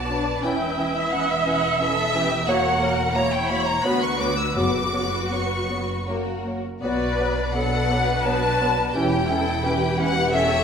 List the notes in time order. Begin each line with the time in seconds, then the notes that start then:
Already playing: B1 B2 B4 D5 A5
0.10 F#3 D4
0.42 E1 E2 E3 C#4 E4 E5 G5
0.77 E3 C#4
0.96 E5
1.11 E3 C#4 B4 F#5
1.31 E5
1.45 E3 C#4 F#5
1.79 E3 C#4 A4 E5
2.14 E3 C#4 G4
2.47 F#3 A#3 F#4 A#4 C#5 F#5
2.79 F#3 A#3 A#4
3.14 F#3 A#3 E4 C#5 A#5
3.32 G5
3.47 F#3 A#3 B5
3.66 A#5
3.83 D2 F#3 B3 F#4 B4 B5
3.88 B3 F#4
4.03 C#6
4.19 F#3 B3 D6
4.38 E6
4.55 F#1 F#2 F#3 B3 F#4 B4 D6
4.93 F#3 B3
5.29 F#3 B3 C#6
5.68 F#3 B3
6.07 F#3 A#3 F#4 A#4
6.44 F#3 A#3
6.81 B1 B2 F#3 B3 F#4 B4 D5
7.18 F#3 B3 D4
7.53 B3 A4 B4 F#5
7.57 F#3
7.89 F#3 B3 B4
8.23 F#3 B3 F#4 A5
8.61 F#3 B3
8.95 E1 E2 E3 C#4 E4 G4 G5
9.30 E3 C#4 E4 A4
9.64 E3 C#4 G4 B4
9.98 E3 C#4 F#5
10.33 E3 C#4 G4 A4 C#5 E5